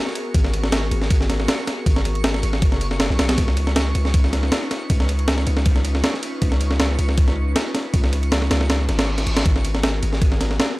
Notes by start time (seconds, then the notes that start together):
Already playing: B3 F#4 G#4 A#4 C#6
0.07 snare
0.15 ride
0.34 G#1, kick, ride
0.44 snare
0.53 ride
0.63 snare
0.72 snare, ride
0.91 G#1, ride
1.02 snare
1.10 kick, ride
1.21 snare
1.30 snare, ride
1.40 snare
1.48 snare, ride
1.67 snare, ride
1.86 G#1, kick, ride
1.96 snare
2.05 ride
2.15 ride
2.24 snare, ride
2.34 snare
2.43 G#1, ride
2.53 snare
2.62 F#1, kick, ride
2.72 snare
2.81 ride
2.91 snare
3.00 snare, ride
3.10 B1, snare
3.19 B1, snare, ride
3.29 snare, ride
3.38 C#2 C#4 D#4 F4 B4, kick, ride
3.48 snare
3.57 ride
3.67 snare
3.76 snare, ride
3.95 C#2, ride
4.05 snare
4.14 kick, ride
4.24 snare
4.33 snare, ride
4.43 snare
4.52 snare, ride
4.71 snare, ride
4.90 C#2, kick, ride
5.00 snare
5.09 ride
5.19 ride
5.28 snare, ride
5.38 snare
5.47 C#2, ride
5.57 snare
5.66 kick, ride
5.76 snare
5.85 ride
5.95 snare
6.04 snare, ride
6.14 snare
6.23 ride
6.42 C#2, kick, ride
6.52 snare
6.61 ride
6.71 snare
6.80 snare, ride
6.99 C#2, ride
7.09 snare
7.18 kick, ride
7.28 snare
7.56 snare, ride
7.75 snare, ride
7.94 C#2, kick, ride
8.04 snare
8.13 ride
8.23 ride
8.32 snare, ride
8.42 snare
8.51 C#2, snare, ride
8.61 snare
8.70 snare, ride, reverse cymbal
8.89 G#1, snare, ride
8.99 snare, ride
9.18 snare, ride
9.27 G#1, ride
9.37 snare, ride
9.45 G#1 B3 F#4 G#4 A#4 D#6, kick, ride
9.56 snare
9.65 ride
9.75 snare
9.83 snare, ride
10.03 G#1, ride
10.13 snare
10.22 kick, ride
10.32 snare
10.41 snare, ride
10.51 snare
10.60 snare, ride